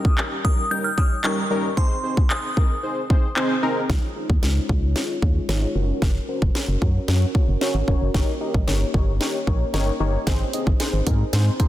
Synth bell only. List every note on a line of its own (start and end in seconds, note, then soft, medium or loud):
0.00 0.14 D#6 medium
0.45 0.69 D#6 medium
0.71 0.85 G6 loud
0.84 0.90 F6 medium
0.98 1.25 D#6 medium
1.24 1.74 C#6 medium
1.77 2.32 C6 medium
2.30 3.59 D#6 medium